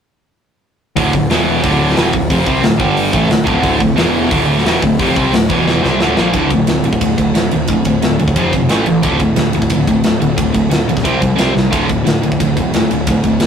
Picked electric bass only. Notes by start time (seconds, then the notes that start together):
0.97 D1
1.14 D1
1.29 E1
1.64 D1
1.97 E1
2.13 D1
2.30 F1
2.46 C2
2.62 D1
2.80 G1
3.13 A1
3.30 D1
3.47 D1
3.63 D1
3.80 D1
3.98 E1
4.31 D1
4.65 E1
4.83 D1
5.00 F1
5.16 C2
5.33 D1
5.49 E1
5.84 C2
5.99 D1
6.17 A#1
6.33 D1
6.50 D1
6.66 D1
6.83 D1
7.02 D1
7.18 D1
7.35 D1
7.52 D1
7.68 D1
7.86 D1
8.02 D1
8.20 D1
8.36 F1
8.53 G1
8.70 A1
8.86 A1
9.03 D1
9.20 D1
9.37 D1
9.54 D1
9.71 D1
9.87 D1
10.04 D1
10.20 D1
10.38 D1
10.54 D1
10.72 D1
10.88 A#1
11.05 C2
11.21 C2
11.39 C2
11.57 C2
11.72 D1
11.89 D1
12.07 D1
12.24 D1
12.41 D1
12.57 D1
12.73 D1
12.91 D1
13.07 D1
13.24 D1
13.40 D1